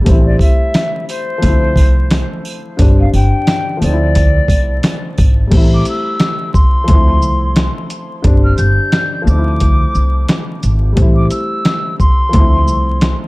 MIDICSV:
0, 0, Header, 1, 5, 480
1, 0, Start_track
1, 0, Key_signature, -1, "minor"
1, 0, Tempo, 681818
1, 45, Time_signature, 4, 2, 24, 8
1, 9346, End_track
2, 0, Start_track
2, 0, Title_t, "Flute"
2, 0, Program_c, 0, 73
2, 173, Note_on_c, 0, 74, 84
2, 267, Note_off_c, 0, 74, 0
2, 281, Note_on_c, 0, 76, 93
2, 735, Note_off_c, 0, 76, 0
2, 763, Note_on_c, 0, 72, 100
2, 1599, Note_off_c, 0, 72, 0
2, 2111, Note_on_c, 0, 77, 81
2, 2197, Note_off_c, 0, 77, 0
2, 2211, Note_on_c, 0, 79, 80
2, 2660, Note_off_c, 0, 79, 0
2, 2692, Note_on_c, 0, 74, 91
2, 3524, Note_off_c, 0, 74, 0
2, 4037, Note_on_c, 0, 86, 77
2, 4120, Note_off_c, 0, 86, 0
2, 4145, Note_on_c, 0, 88, 91
2, 4587, Note_off_c, 0, 88, 0
2, 4598, Note_on_c, 0, 84, 91
2, 5437, Note_off_c, 0, 84, 0
2, 5939, Note_on_c, 0, 89, 81
2, 6030, Note_off_c, 0, 89, 0
2, 6035, Note_on_c, 0, 91, 84
2, 6492, Note_off_c, 0, 91, 0
2, 6528, Note_on_c, 0, 86, 101
2, 7362, Note_off_c, 0, 86, 0
2, 7851, Note_on_c, 0, 86, 86
2, 7946, Note_off_c, 0, 86, 0
2, 7958, Note_on_c, 0, 88, 94
2, 8413, Note_off_c, 0, 88, 0
2, 8445, Note_on_c, 0, 84, 102
2, 9280, Note_off_c, 0, 84, 0
2, 9346, End_track
3, 0, Start_track
3, 0, Title_t, "Grand piano"
3, 0, Program_c, 1, 0
3, 0, Control_c, 1, 64, 127
3, 10, Note_on_c, 1, 55, 72
3, 34, Note_on_c, 1, 57, 61
3, 53, Control_c, 1, 64, 0
3, 56, Note_on_c, 1, 60, 67
3, 79, Note_on_c, 1, 64, 77
3, 192, Control_c, 1, 64, 127
3, 968, Note_off_c, 1, 55, 0
3, 972, Note_on_c, 1, 53, 68
3, 980, Note_off_c, 1, 57, 0
3, 991, Note_off_c, 1, 60, 0
3, 995, Note_on_c, 1, 57, 65
3, 1003, Note_off_c, 1, 64, 0
3, 1016, Control_c, 1, 64, 0
3, 1018, Note_on_c, 1, 60, 62
3, 1041, Note_on_c, 1, 64, 74
3, 1123, Control_c, 1, 64, 127
3, 1929, Note_off_c, 1, 53, 0
3, 1941, Note_off_c, 1, 57, 0
3, 1951, Note_on_c, 1, 50, 70
3, 1952, Note_off_c, 1, 60, 0
3, 1962, Note_on_c, 1, 55, 64
3, 1964, Note_off_c, 1, 64, 0
3, 1973, Control_c, 1, 64, 0
3, 1973, Note_on_c, 1, 60, 61
3, 1984, Note_on_c, 1, 62, 83
3, 2080, Control_c, 1, 64, 127
3, 2655, Note_on_c, 1, 53, 69
3, 2677, Note_on_c, 1, 57, 61
3, 2678, Note_off_c, 1, 50, 0
3, 2683, Note_off_c, 1, 55, 0
3, 2688, Note_off_c, 1, 60, 0
3, 2694, Note_off_c, 1, 62, 0
3, 2694, Control_c, 1, 64, 0
3, 2699, Note_on_c, 1, 60, 63
3, 2722, Note_on_c, 1, 63, 60
3, 2758, Note_off_c, 1, 63, 0
3, 2768, Note_on_c, 1, 64, 74
3, 2821, Control_c, 1, 64, 127
3, 3846, Note_off_c, 1, 53, 0
3, 3853, Note_on_c, 1, 55, 70
3, 3857, Note_off_c, 1, 57, 0
3, 3868, Note_off_c, 1, 60, 0
3, 3875, Note_on_c, 1, 57, 63
3, 3894, Control_c, 1, 64, 0
3, 3897, Note_on_c, 1, 60, 66
3, 3904, Note_off_c, 1, 64, 0
3, 3921, Note_on_c, 1, 64, 82
3, 4035, Control_c, 1, 64, 127
3, 4809, Note_off_c, 1, 55, 0
3, 4815, Note_on_c, 1, 53, 67
3, 4821, Note_off_c, 1, 57, 0
3, 4832, Note_off_c, 1, 60, 0
3, 4838, Note_on_c, 1, 57, 69
3, 4844, Note_off_c, 1, 64, 0
3, 4853, Control_c, 1, 64, 0
3, 4860, Note_on_c, 1, 60, 64
3, 4882, Note_on_c, 1, 64, 75
3, 4967, Control_c, 1, 64, 127
3, 5771, Note_off_c, 1, 53, 0
3, 5782, Note_off_c, 1, 57, 0
3, 5789, Note_on_c, 1, 50, 69
3, 5793, Note_off_c, 1, 60, 0
3, 5800, Note_on_c, 1, 55, 67
3, 5805, Note_off_c, 1, 64, 0
3, 5812, Note_on_c, 1, 60, 63
3, 5813, Control_c, 1, 64, 0
3, 5822, Note_on_c, 1, 62, 86
3, 5922, Control_c, 1, 64, 127
3, 6491, Note_on_c, 1, 53, 68
3, 6514, Note_on_c, 1, 57, 65
3, 6517, Note_off_c, 1, 50, 0
3, 6523, Note_off_c, 1, 55, 0
3, 6525, Note_off_c, 1, 60, 0
3, 6534, Note_off_c, 1, 62, 0
3, 6535, Control_c, 1, 64, 0
3, 6536, Note_on_c, 1, 60, 65
3, 6559, Note_on_c, 1, 63, 62
3, 6596, Note_off_c, 1, 63, 0
3, 6604, Note_on_c, 1, 64, 74
3, 6639, Control_c, 1, 64, 127
3, 7683, Note_off_c, 1, 53, 0
3, 7690, Note_on_c, 1, 55, 73
3, 7695, Note_off_c, 1, 57, 0
3, 7706, Note_off_c, 1, 60, 0
3, 7713, Note_on_c, 1, 57, 62
3, 7735, Control_c, 1, 64, 0
3, 7735, Note_on_c, 1, 60, 68
3, 7741, Note_off_c, 1, 64, 0
3, 7758, Note_on_c, 1, 64, 77
3, 7869, Control_c, 1, 64, 127
3, 8648, Note_off_c, 1, 55, 0
3, 8654, Note_on_c, 1, 53, 72
3, 8659, Note_off_c, 1, 57, 0
3, 8671, Note_off_c, 1, 60, 0
3, 8677, Note_on_c, 1, 57, 66
3, 8683, Note_off_c, 1, 64, 0
3, 8694, Control_c, 1, 64, 0
3, 8700, Note_on_c, 1, 60, 65
3, 8722, Note_on_c, 1, 64, 78
3, 8821, Control_c, 1, 64, 127
3, 9346, Note_off_c, 1, 53, 0
3, 9346, Note_off_c, 1, 57, 0
3, 9346, Note_off_c, 1, 60, 0
3, 9346, Note_off_c, 1, 64, 0
3, 9346, End_track
4, 0, Start_track
4, 0, Title_t, "Upright bass"
4, 0, Program_c, 2, 32
4, 46, Note_on_c, 2, 33, 107
4, 243, Note_off_c, 2, 33, 0
4, 1010, Note_on_c, 2, 38, 101
4, 1239, Note_off_c, 2, 38, 0
4, 1239, Note_on_c, 2, 36, 103
4, 1557, Note_off_c, 2, 36, 0
4, 1967, Note_on_c, 2, 31, 107
4, 2164, Note_off_c, 2, 31, 0
4, 2208, Note_on_c, 2, 31, 94
4, 2324, Note_off_c, 2, 31, 0
4, 2688, Note_on_c, 2, 38, 100
4, 3082, Note_off_c, 2, 38, 0
4, 3158, Note_on_c, 2, 36, 87
4, 3358, Note_off_c, 2, 36, 0
4, 3651, Note_on_c, 2, 32, 85
4, 3846, Note_off_c, 2, 32, 0
4, 3885, Note_on_c, 2, 33, 114
4, 4083, Note_off_c, 2, 33, 0
4, 4849, Note_on_c, 2, 38, 104
4, 5085, Note_off_c, 2, 38, 0
4, 5085, Note_on_c, 2, 36, 106
4, 5401, Note_off_c, 2, 36, 0
4, 5805, Note_on_c, 2, 31, 109
4, 6003, Note_off_c, 2, 31, 0
4, 6046, Note_on_c, 2, 31, 97
4, 6163, Note_off_c, 2, 31, 0
4, 6526, Note_on_c, 2, 38, 102
4, 6921, Note_off_c, 2, 38, 0
4, 7007, Note_on_c, 2, 36, 88
4, 7204, Note_off_c, 2, 36, 0
4, 7486, Note_on_c, 2, 32, 90
4, 7684, Note_off_c, 2, 32, 0
4, 7725, Note_on_c, 2, 33, 113
4, 7922, Note_off_c, 2, 33, 0
4, 8688, Note_on_c, 2, 38, 102
4, 8927, Note_off_c, 2, 38, 0
4, 8927, Note_on_c, 2, 36, 102
4, 9242, Note_off_c, 2, 36, 0
4, 9346, End_track
5, 0, Start_track
5, 0, Title_t, "Drums"
5, 43, Note_on_c, 9, 42, 92
5, 43, Note_on_c, 9, 83, 44
5, 45, Note_on_c, 9, 36, 126
5, 114, Note_off_c, 9, 42, 0
5, 114, Note_off_c, 9, 83, 0
5, 115, Note_off_c, 9, 36, 0
5, 277, Note_on_c, 9, 36, 95
5, 286, Note_on_c, 9, 83, 67
5, 347, Note_off_c, 9, 36, 0
5, 356, Note_off_c, 9, 83, 0
5, 523, Note_on_c, 9, 42, 75
5, 525, Note_on_c, 9, 83, 49
5, 526, Note_on_c, 9, 38, 115
5, 531, Note_on_c, 9, 40, 95
5, 593, Note_off_c, 9, 42, 0
5, 596, Note_off_c, 9, 83, 0
5, 597, Note_off_c, 9, 38, 0
5, 601, Note_off_c, 9, 40, 0
5, 766, Note_on_c, 9, 83, 77
5, 772, Note_on_c, 9, 42, 48
5, 836, Note_off_c, 9, 83, 0
5, 842, Note_off_c, 9, 42, 0
5, 1003, Note_on_c, 9, 42, 91
5, 1003, Note_on_c, 9, 83, 56
5, 1009, Note_on_c, 9, 36, 86
5, 1074, Note_off_c, 9, 42, 0
5, 1074, Note_off_c, 9, 83, 0
5, 1079, Note_off_c, 9, 36, 0
5, 1237, Note_on_c, 9, 36, 83
5, 1246, Note_on_c, 9, 83, 81
5, 1308, Note_off_c, 9, 36, 0
5, 1317, Note_off_c, 9, 83, 0
5, 1482, Note_on_c, 9, 42, 85
5, 1484, Note_on_c, 9, 83, 52
5, 1487, Note_on_c, 9, 38, 123
5, 1492, Note_on_c, 9, 40, 93
5, 1553, Note_off_c, 9, 42, 0
5, 1555, Note_off_c, 9, 83, 0
5, 1557, Note_off_c, 9, 38, 0
5, 1562, Note_off_c, 9, 40, 0
5, 1724, Note_on_c, 9, 83, 73
5, 1795, Note_off_c, 9, 83, 0
5, 1963, Note_on_c, 9, 42, 94
5, 1965, Note_on_c, 9, 36, 126
5, 1965, Note_on_c, 9, 83, 47
5, 2034, Note_off_c, 9, 42, 0
5, 2035, Note_off_c, 9, 83, 0
5, 2036, Note_off_c, 9, 36, 0
5, 2207, Note_on_c, 9, 83, 69
5, 2277, Note_off_c, 9, 83, 0
5, 2443, Note_on_c, 9, 42, 73
5, 2445, Note_on_c, 9, 83, 48
5, 2446, Note_on_c, 9, 38, 118
5, 2451, Note_on_c, 9, 40, 94
5, 2513, Note_off_c, 9, 42, 0
5, 2516, Note_off_c, 9, 83, 0
5, 2517, Note_off_c, 9, 38, 0
5, 2521, Note_off_c, 9, 40, 0
5, 2686, Note_on_c, 9, 83, 73
5, 2692, Note_on_c, 9, 42, 48
5, 2757, Note_off_c, 9, 83, 0
5, 2762, Note_off_c, 9, 42, 0
5, 2923, Note_on_c, 9, 83, 55
5, 2924, Note_on_c, 9, 42, 93
5, 2928, Note_on_c, 9, 36, 88
5, 2993, Note_off_c, 9, 83, 0
5, 2994, Note_off_c, 9, 42, 0
5, 2999, Note_off_c, 9, 36, 0
5, 3157, Note_on_c, 9, 36, 87
5, 3165, Note_on_c, 9, 42, 52
5, 3167, Note_on_c, 9, 83, 78
5, 3227, Note_off_c, 9, 36, 0
5, 3235, Note_off_c, 9, 42, 0
5, 3237, Note_off_c, 9, 83, 0
5, 3402, Note_on_c, 9, 42, 82
5, 3404, Note_on_c, 9, 83, 54
5, 3406, Note_on_c, 9, 38, 122
5, 3411, Note_on_c, 9, 40, 95
5, 3472, Note_off_c, 9, 42, 0
5, 3474, Note_off_c, 9, 83, 0
5, 3477, Note_off_c, 9, 38, 0
5, 3482, Note_off_c, 9, 40, 0
5, 3644, Note_on_c, 9, 83, 74
5, 3650, Note_on_c, 9, 36, 92
5, 3714, Note_off_c, 9, 83, 0
5, 3720, Note_off_c, 9, 36, 0
5, 3882, Note_on_c, 9, 42, 95
5, 3884, Note_on_c, 9, 36, 123
5, 3885, Note_on_c, 9, 49, 103
5, 3953, Note_off_c, 9, 42, 0
5, 3955, Note_off_c, 9, 36, 0
5, 3955, Note_off_c, 9, 49, 0
5, 4121, Note_on_c, 9, 42, 59
5, 4121, Note_on_c, 9, 82, 60
5, 4191, Note_off_c, 9, 42, 0
5, 4191, Note_off_c, 9, 82, 0
5, 4362, Note_on_c, 9, 42, 76
5, 4365, Note_on_c, 9, 38, 119
5, 4370, Note_on_c, 9, 40, 95
5, 4433, Note_off_c, 9, 42, 0
5, 4436, Note_off_c, 9, 38, 0
5, 4440, Note_off_c, 9, 40, 0
5, 4606, Note_on_c, 9, 36, 105
5, 4610, Note_on_c, 9, 82, 50
5, 4677, Note_off_c, 9, 36, 0
5, 4681, Note_off_c, 9, 82, 0
5, 4842, Note_on_c, 9, 42, 93
5, 4847, Note_on_c, 9, 36, 92
5, 4912, Note_off_c, 9, 42, 0
5, 4918, Note_off_c, 9, 36, 0
5, 5084, Note_on_c, 9, 82, 53
5, 5154, Note_off_c, 9, 82, 0
5, 5321, Note_on_c, 9, 42, 85
5, 5326, Note_on_c, 9, 38, 120
5, 5330, Note_on_c, 9, 40, 99
5, 5391, Note_off_c, 9, 42, 0
5, 5396, Note_off_c, 9, 38, 0
5, 5401, Note_off_c, 9, 40, 0
5, 5563, Note_on_c, 9, 42, 59
5, 5563, Note_on_c, 9, 82, 58
5, 5633, Note_off_c, 9, 42, 0
5, 5633, Note_off_c, 9, 82, 0
5, 5802, Note_on_c, 9, 42, 95
5, 5804, Note_on_c, 9, 36, 123
5, 5873, Note_off_c, 9, 42, 0
5, 5875, Note_off_c, 9, 36, 0
5, 6039, Note_on_c, 9, 42, 59
5, 6039, Note_on_c, 9, 82, 61
5, 6110, Note_off_c, 9, 42, 0
5, 6110, Note_off_c, 9, 82, 0
5, 6281, Note_on_c, 9, 42, 76
5, 6284, Note_on_c, 9, 38, 114
5, 6289, Note_on_c, 9, 40, 96
5, 6351, Note_off_c, 9, 42, 0
5, 6355, Note_off_c, 9, 38, 0
5, 6359, Note_off_c, 9, 40, 0
5, 6529, Note_on_c, 9, 82, 49
5, 6600, Note_off_c, 9, 82, 0
5, 6761, Note_on_c, 9, 42, 94
5, 6767, Note_on_c, 9, 36, 92
5, 6832, Note_off_c, 9, 42, 0
5, 6837, Note_off_c, 9, 36, 0
5, 7004, Note_on_c, 9, 82, 52
5, 7075, Note_off_c, 9, 82, 0
5, 7241, Note_on_c, 9, 42, 86
5, 7246, Note_on_c, 9, 38, 125
5, 7250, Note_on_c, 9, 40, 99
5, 7311, Note_off_c, 9, 42, 0
5, 7316, Note_off_c, 9, 38, 0
5, 7321, Note_off_c, 9, 40, 0
5, 7483, Note_on_c, 9, 42, 58
5, 7483, Note_on_c, 9, 82, 58
5, 7553, Note_off_c, 9, 42, 0
5, 7553, Note_off_c, 9, 82, 0
5, 7721, Note_on_c, 9, 42, 98
5, 7724, Note_on_c, 9, 36, 124
5, 7792, Note_off_c, 9, 42, 0
5, 7794, Note_off_c, 9, 36, 0
5, 7959, Note_on_c, 9, 42, 61
5, 7959, Note_on_c, 9, 82, 58
5, 8029, Note_off_c, 9, 42, 0
5, 8029, Note_off_c, 9, 82, 0
5, 8201, Note_on_c, 9, 42, 78
5, 8205, Note_on_c, 9, 38, 119
5, 8209, Note_on_c, 9, 40, 97
5, 8272, Note_off_c, 9, 42, 0
5, 8275, Note_off_c, 9, 38, 0
5, 8280, Note_off_c, 9, 40, 0
5, 8446, Note_on_c, 9, 36, 99
5, 8449, Note_on_c, 9, 82, 50
5, 8517, Note_off_c, 9, 36, 0
5, 8520, Note_off_c, 9, 82, 0
5, 8682, Note_on_c, 9, 42, 91
5, 8687, Note_on_c, 9, 36, 90
5, 8752, Note_off_c, 9, 42, 0
5, 8758, Note_off_c, 9, 36, 0
5, 8924, Note_on_c, 9, 82, 55
5, 8995, Note_off_c, 9, 82, 0
5, 9161, Note_on_c, 9, 42, 84
5, 9166, Note_on_c, 9, 38, 118
5, 9171, Note_on_c, 9, 40, 95
5, 9232, Note_off_c, 9, 42, 0
5, 9236, Note_off_c, 9, 38, 0
5, 9241, Note_off_c, 9, 40, 0
5, 9346, End_track
0, 0, End_of_file